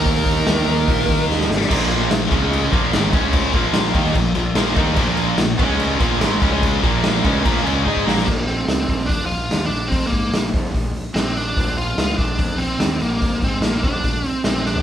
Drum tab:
CC |----------------|x-x-x-x-x-x-x-x-|x-x-x-x-x-x-x-x-|x-x-x-x-x-x-x-x-|
HH |o-o-o-o-o-o-----|----------------|----------------|----------------|
SD |----o-------oooo|----o-------o---|----o--o----o---|----o-------o---|
FT |----------------|----------------|----------------|----------------|
BD |o-o-----o-o-----|o-----o---o---o-|o-o---o-o-----o-|o-----o---o---o-|

CC |x-x-x-x-x-x-----|x---------------|----------------|----------------|
HH |----------------|--o-o-o-o-o-o-o-|o-o-o-o-o-o-o-o-|o-o-o-o-o-o-o-o-|
SD |----o---------oo|----o--o----o---|----o-oo----o---|----o-------o---|
FT |----------------|----------------|----------------|----------------|
BD |o-o---o-o---oo--|o-----o-o-------|o-o---o-o-------|o-----o-o-------|

CC |----------------|
HH |o-o-o-o-o-o-o---|
SD |----o-o-----o-o-|
FT |---------------o|
BD |o-o---o-o-------|